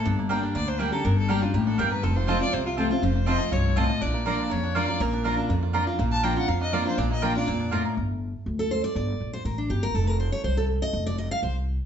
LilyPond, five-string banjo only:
\new Staff \with { instrumentName = "Five-string banjo" } { \time 4/4 \key bes \major \tempo 4 = 243 d'8 bes8 bes'8 d'8 bes8 d'8 g'8 bes'8 | d'4 bes'8 d'8 bes8 d'8 g'8 bes'8 | c'8 f'8 f'8 f'8 c'8 f'8 f'8 f'8 | f'8 f'8 f'8 f'8 f'8 c'8 f'8 f'8 |
d'8 bes8 bes'8 d'8 bes8 d'8 f'8 bes'8 | bes8 d'8 f'8 d'8 bes8 f'8 bes'8 f'8 | bes8 d'8 bes'8 f'8 bes'8 d'8 f'8 bes8 | d'8 bes8 bes'8 d'8 bes8 d'8 f'8 bes'8 |
r1 | r1 | r1 | r1 | }